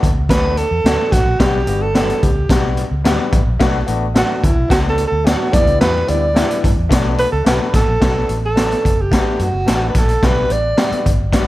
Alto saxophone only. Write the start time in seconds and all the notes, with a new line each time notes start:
0.30 B4
0.58 A4
1.12 F#4
1.40 G4
1.82 A4
2.23 G4
4.17 F#4
4.44 E4
4.71 F#4
4.89 A4
5.07 A4
5.26 F#4
5.53 D5
5.81 B4
6.09 D5
7.19 B4
7.32 A4
7.47 B4
7.75 A4
8.46 A4
9.01 G4
9.42 F#4
9.89 B4
9.98 A4
10.26 B4
10.52 D5